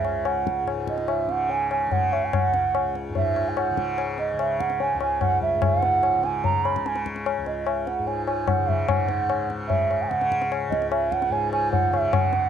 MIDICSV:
0, 0, Header, 1, 4, 480
1, 0, Start_track
1, 0, Tempo, 412371
1, 779, Time_signature, 4, 2, 24, 8
1, 7015, Tempo, 406229
1, 14657, End_track
2, 0, Start_track
2, 0, Title_t, "Bansuri"
2, 0, Program_c, 0, 73
2, 0, Note_on_c, 0, 76, 72
2, 307, Note_on_c, 0, 78, 79
2, 324, Note_off_c, 0, 76, 0
2, 784, Note_off_c, 0, 78, 0
2, 1039, Note_on_c, 0, 75, 65
2, 1269, Note_on_c, 0, 76, 72
2, 1287, Note_off_c, 0, 75, 0
2, 1523, Note_on_c, 0, 78, 71
2, 1540, Note_off_c, 0, 76, 0
2, 1754, Note_on_c, 0, 80, 76
2, 1771, Note_off_c, 0, 78, 0
2, 1989, Note_off_c, 0, 80, 0
2, 2000, Note_on_c, 0, 80, 68
2, 2234, Note_on_c, 0, 78, 69
2, 2251, Note_off_c, 0, 80, 0
2, 2473, Note_on_c, 0, 76, 72
2, 2491, Note_off_c, 0, 78, 0
2, 2618, Note_on_c, 0, 80, 52
2, 2635, Note_off_c, 0, 76, 0
2, 2727, Note_on_c, 0, 78, 85
2, 2744, Note_off_c, 0, 80, 0
2, 3437, Note_off_c, 0, 78, 0
2, 3686, Note_on_c, 0, 76, 78
2, 4061, Note_on_c, 0, 80, 53
2, 4078, Note_off_c, 0, 76, 0
2, 4166, Note_on_c, 0, 78, 70
2, 4184, Note_off_c, 0, 80, 0
2, 4636, Note_off_c, 0, 78, 0
2, 4876, Note_on_c, 0, 75, 70
2, 5117, Note_on_c, 0, 76, 79
2, 5135, Note_off_c, 0, 75, 0
2, 5355, Note_on_c, 0, 78, 77
2, 5372, Note_off_c, 0, 76, 0
2, 5605, Note_on_c, 0, 80, 83
2, 5622, Note_off_c, 0, 78, 0
2, 5824, Note_off_c, 0, 80, 0
2, 5831, Note_on_c, 0, 80, 80
2, 6067, Note_on_c, 0, 78, 88
2, 6085, Note_off_c, 0, 80, 0
2, 6303, Note_off_c, 0, 78, 0
2, 6311, Note_on_c, 0, 76, 83
2, 6550, Note_on_c, 0, 78, 98
2, 6568, Note_off_c, 0, 76, 0
2, 7273, Note_on_c, 0, 80, 84
2, 7291, Note_off_c, 0, 78, 0
2, 7509, Note_on_c, 0, 82, 93
2, 7527, Note_off_c, 0, 80, 0
2, 7749, Note_on_c, 0, 83, 84
2, 7767, Note_off_c, 0, 82, 0
2, 8002, Note_on_c, 0, 80, 75
2, 8020, Note_off_c, 0, 83, 0
2, 8234, Note_off_c, 0, 80, 0
2, 8712, Note_on_c, 0, 75, 60
2, 8954, Note_on_c, 0, 76, 65
2, 8972, Note_off_c, 0, 75, 0
2, 9188, Note_on_c, 0, 78, 71
2, 9205, Note_off_c, 0, 76, 0
2, 9435, Note_on_c, 0, 80, 74
2, 9452, Note_off_c, 0, 78, 0
2, 9658, Note_off_c, 0, 80, 0
2, 9665, Note_on_c, 0, 80, 70
2, 9910, Note_on_c, 0, 78, 74
2, 9928, Note_off_c, 0, 80, 0
2, 10149, Note_on_c, 0, 76, 69
2, 10166, Note_off_c, 0, 78, 0
2, 10391, Note_on_c, 0, 78, 84
2, 10409, Note_off_c, 0, 76, 0
2, 11113, Note_off_c, 0, 78, 0
2, 11332, Note_on_c, 0, 76, 84
2, 11737, Note_on_c, 0, 80, 56
2, 11754, Note_off_c, 0, 76, 0
2, 11813, Note_on_c, 0, 78, 78
2, 11831, Note_off_c, 0, 80, 0
2, 12302, Note_off_c, 0, 78, 0
2, 12537, Note_on_c, 0, 75, 77
2, 12765, Note_off_c, 0, 75, 0
2, 12783, Note_on_c, 0, 76, 78
2, 13035, Note_on_c, 0, 78, 83
2, 13052, Note_off_c, 0, 76, 0
2, 13268, Note_on_c, 0, 80, 89
2, 13286, Note_off_c, 0, 78, 0
2, 13507, Note_off_c, 0, 80, 0
2, 13512, Note_on_c, 0, 80, 79
2, 13731, Note_off_c, 0, 80, 0
2, 13741, Note_on_c, 0, 78, 88
2, 13970, Note_on_c, 0, 76, 86
2, 13988, Note_off_c, 0, 78, 0
2, 14227, Note_on_c, 0, 78, 94
2, 14244, Note_off_c, 0, 76, 0
2, 14657, Note_off_c, 0, 78, 0
2, 14657, End_track
3, 0, Start_track
3, 0, Title_t, "Tanpura"
3, 0, Program_c, 1, 104
3, 0, Note_on_c, 1, 37, 56
3, 0, Note_on_c, 1, 44, 57
3, 0, Note_on_c, 1, 49, 55
3, 740, Note_off_c, 1, 44, 0
3, 744, Note_on_c, 1, 44, 47
3, 1463, Note_off_c, 1, 49, 0
3, 1463, Note_on_c, 1, 49, 53
3, 2171, Note_off_c, 1, 49, 0
3, 2171, Note_on_c, 1, 49, 53
3, 2879, Note_off_c, 1, 37, 0
3, 2884, Note_on_c, 1, 37, 55
3, 3590, Note_off_c, 1, 44, 0
3, 3595, Note_on_c, 1, 44, 61
3, 4312, Note_off_c, 1, 49, 0
3, 4312, Note_on_c, 1, 49, 55
3, 5036, Note_off_c, 1, 49, 0
3, 5036, Note_on_c, 1, 49, 56
3, 5741, Note_off_c, 1, 37, 0
3, 5746, Note_on_c, 1, 37, 60
3, 6459, Note_off_c, 1, 44, 0
3, 6464, Note_on_c, 1, 44, 45
3, 7189, Note_off_c, 1, 49, 0
3, 7189, Note_on_c, 1, 49, 52
3, 7900, Note_off_c, 1, 49, 0
3, 7900, Note_on_c, 1, 49, 47
3, 8608, Note_off_c, 1, 37, 0
3, 8612, Note_on_c, 1, 37, 50
3, 9325, Note_off_c, 1, 44, 0
3, 9330, Note_on_c, 1, 44, 55
3, 10038, Note_off_c, 1, 49, 0
3, 10038, Note_on_c, 1, 49, 49
3, 10388, Note_off_c, 1, 44, 0
3, 10388, Note_on_c, 1, 44, 54
3, 11117, Note_off_c, 1, 49, 0
3, 11117, Note_on_c, 1, 49, 56
3, 11824, Note_off_c, 1, 49, 0
3, 11824, Note_on_c, 1, 49, 54
3, 12516, Note_off_c, 1, 37, 0
3, 12521, Note_on_c, 1, 37, 60
3, 13238, Note_off_c, 1, 44, 0
3, 13238, Note_on_c, 1, 44, 64
3, 13958, Note_off_c, 1, 49, 0
3, 13963, Note_on_c, 1, 49, 51
3, 14657, Note_off_c, 1, 37, 0
3, 14657, Note_off_c, 1, 44, 0
3, 14657, Note_off_c, 1, 49, 0
3, 14657, End_track
4, 0, Start_track
4, 0, Title_t, "Tabla"
4, 54, Note_on_c, 9, 60, 59
4, 170, Note_off_c, 9, 60, 0
4, 295, Note_on_c, 9, 60, 67
4, 411, Note_off_c, 9, 60, 0
4, 545, Note_on_c, 9, 37, 53
4, 661, Note_off_c, 9, 37, 0
4, 786, Note_on_c, 9, 60, 74
4, 903, Note_off_c, 9, 60, 0
4, 1017, Note_on_c, 9, 37, 50
4, 1133, Note_off_c, 9, 37, 0
4, 1137, Note_on_c, 9, 62, 48
4, 1253, Note_off_c, 9, 62, 0
4, 1258, Note_on_c, 9, 60, 61
4, 1375, Note_off_c, 9, 60, 0
4, 1501, Note_on_c, 9, 62, 53
4, 1617, Note_off_c, 9, 62, 0
4, 1740, Note_on_c, 9, 63, 66
4, 1857, Note_off_c, 9, 63, 0
4, 1990, Note_on_c, 9, 60, 57
4, 2106, Note_off_c, 9, 60, 0
4, 2229, Note_on_c, 9, 63, 70
4, 2229, Note_on_c, 9, 64, 65
4, 2345, Note_off_c, 9, 63, 0
4, 2345, Note_off_c, 9, 64, 0
4, 2479, Note_on_c, 9, 60, 47
4, 2596, Note_off_c, 9, 60, 0
4, 2716, Note_on_c, 9, 60, 89
4, 2716, Note_on_c, 9, 64, 82
4, 2833, Note_off_c, 9, 60, 0
4, 2833, Note_off_c, 9, 64, 0
4, 2953, Note_on_c, 9, 62, 71
4, 3069, Note_off_c, 9, 62, 0
4, 3197, Note_on_c, 9, 60, 68
4, 3313, Note_off_c, 9, 60, 0
4, 3437, Note_on_c, 9, 62, 47
4, 3554, Note_off_c, 9, 62, 0
4, 3670, Note_on_c, 9, 63, 65
4, 3670, Note_on_c, 9, 64, 60
4, 3787, Note_off_c, 9, 63, 0
4, 3787, Note_off_c, 9, 64, 0
4, 3915, Note_on_c, 9, 60, 55
4, 4031, Note_off_c, 9, 60, 0
4, 4155, Note_on_c, 9, 60, 65
4, 4271, Note_off_c, 9, 60, 0
4, 4394, Note_on_c, 9, 37, 45
4, 4510, Note_off_c, 9, 37, 0
4, 4634, Note_on_c, 9, 60, 67
4, 4750, Note_off_c, 9, 60, 0
4, 4865, Note_on_c, 9, 62, 55
4, 4982, Note_off_c, 9, 62, 0
4, 5113, Note_on_c, 9, 60, 68
4, 5229, Note_off_c, 9, 60, 0
4, 5358, Note_on_c, 9, 37, 54
4, 5468, Note_on_c, 9, 62, 55
4, 5475, Note_off_c, 9, 37, 0
4, 5584, Note_off_c, 9, 62, 0
4, 5589, Note_on_c, 9, 63, 68
4, 5705, Note_off_c, 9, 63, 0
4, 5825, Note_on_c, 9, 60, 56
4, 5942, Note_off_c, 9, 60, 0
4, 6065, Note_on_c, 9, 60, 66
4, 6065, Note_on_c, 9, 64, 66
4, 6182, Note_off_c, 9, 60, 0
4, 6182, Note_off_c, 9, 64, 0
4, 6306, Note_on_c, 9, 64, 47
4, 6423, Note_off_c, 9, 64, 0
4, 6539, Note_on_c, 9, 60, 90
4, 6539, Note_on_c, 9, 64, 88
4, 6655, Note_off_c, 9, 60, 0
4, 6655, Note_off_c, 9, 64, 0
4, 6780, Note_on_c, 9, 62, 70
4, 6897, Note_off_c, 9, 62, 0
4, 7020, Note_on_c, 9, 60, 67
4, 7139, Note_off_c, 9, 60, 0
4, 7259, Note_on_c, 9, 62, 50
4, 7377, Note_off_c, 9, 62, 0
4, 7503, Note_on_c, 9, 63, 71
4, 7503, Note_on_c, 9, 64, 66
4, 7621, Note_off_c, 9, 63, 0
4, 7621, Note_off_c, 9, 64, 0
4, 7755, Note_on_c, 9, 60, 50
4, 7873, Note_off_c, 9, 60, 0
4, 7882, Note_on_c, 9, 37, 50
4, 7999, Note_on_c, 9, 62, 69
4, 8001, Note_off_c, 9, 37, 0
4, 8112, Note_off_c, 9, 62, 0
4, 8112, Note_on_c, 9, 62, 56
4, 8230, Note_off_c, 9, 62, 0
4, 8235, Note_on_c, 9, 37, 48
4, 8352, Note_on_c, 9, 62, 53
4, 8353, Note_off_c, 9, 37, 0
4, 8470, Note_off_c, 9, 62, 0
4, 8476, Note_on_c, 9, 60, 72
4, 8594, Note_off_c, 9, 60, 0
4, 8712, Note_on_c, 9, 62, 53
4, 8830, Note_off_c, 9, 62, 0
4, 8951, Note_on_c, 9, 60, 67
4, 9069, Note_off_c, 9, 60, 0
4, 9194, Note_on_c, 9, 62, 55
4, 9312, Note_off_c, 9, 62, 0
4, 9433, Note_on_c, 9, 63, 67
4, 9551, Note_off_c, 9, 63, 0
4, 9672, Note_on_c, 9, 60, 50
4, 9790, Note_off_c, 9, 60, 0
4, 9908, Note_on_c, 9, 60, 71
4, 9908, Note_on_c, 9, 64, 65
4, 10027, Note_off_c, 9, 60, 0
4, 10027, Note_off_c, 9, 64, 0
4, 10161, Note_on_c, 9, 64, 43
4, 10279, Note_off_c, 9, 64, 0
4, 10393, Note_on_c, 9, 60, 96
4, 10393, Note_on_c, 9, 64, 95
4, 10511, Note_off_c, 9, 60, 0
4, 10511, Note_off_c, 9, 64, 0
4, 10629, Note_on_c, 9, 62, 80
4, 10747, Note_off_c, 9, 62, 0
4, 10879, Note_on_c, 9, 60, 70
4, 10997, Note_off_c, 9, 60, 0
4, 11119, Note_on_c, 9, 62, 56
4, 11237, Note_off_c, 9, 62, 0
4, 11353, Note_on_c, 9, 63, 71
4, 11353, Note_on_c, 9, 64, 62
4, 11471, Note_off_c, 9, 63, 0
4, 11471, Note_off_c, 9, 64, 0
4, 11601, Note_on_c, 9, 60, 55
4, 11719, Note_off_c, 9, 60, 0
4, 11840, Note_on_c, 9, 62, 74
4, 11959, Note_off_c, 9, 62, 0
4, 11963, Note_on_c, 9, 62, 60
4, 12081, Note_off_c, 9, 62, 0
4, 12084, Note_on_c, 9, 37, 55
4, 12201, Note_on_c, 9, 62, 63
4, 12202, Note_off_c, 9, 37, 0
4, 12319, Note_off_c, 9, 62, 0
4, 12322, Note_on_c, 9, 60, 77
4, 12440, Note_off_c, 9, 60, 0
4, 12565, Note_on_c, 9, 37, 55
4, 12678, Note_on_c, 9, 62, 60
4, 12683, Note_off_c, 9, 37, 0
4, 12792, Note_on_c, 9, 60, 70
4, 12796, Note_off_c, 9, 62, 0
4, 12910, Note_off_c, 9, 60, 0
4, 13034, Note_on_c, 9, 37, 55
4, 13152, Note_off_c, 9, 37, 0
4, 13153, Note_on_c, 9, 62, 63
4, 13271, Note_off_c, 9, 62, 0
4, 13274, Note_on_c, 9, 63, 76
4, 13392, Note_off_c, 9, 63, 0
4, 13515, Note_on_c, 9, 60, 62
4, 13634, Note_off_c, 9, 60, 0
4, 13751, Note_on_c, 9, 63, 75
4, 13751, Note_on_c, 9, 64, 69
4, 13869, Note_off_c, 9, 63, 0
4, 13869, Note_off_c, 9, 64, 0
4, 13995, Note_on_c, 9, 60, 56
4, 14113, Note_off_c, 9, 60, 0
4, 14227, Note_on_c, 9, 60, 93
4, 14227, Note_on_c, 9, 64, 93
4, 14345, Note_off_c, 9, 60, 0
4, 14345, Note_off_c, 9, 64, 0
4, 14459, Note_on_c, 9, 62, 76
4, 14577, Note_off_c, 9, 62, 0
4, 14657, End_track
0, 0, End_of_file